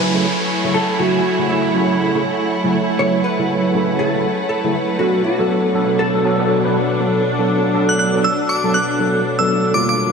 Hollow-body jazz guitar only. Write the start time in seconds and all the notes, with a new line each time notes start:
0.00 B4
0.74 A4
0.99 F#4
1.49 E4
2.99 C#5
3.24 B4
3.99 A4
4.49 A4
4.99 F#4
5.24 F#4
5.99 A4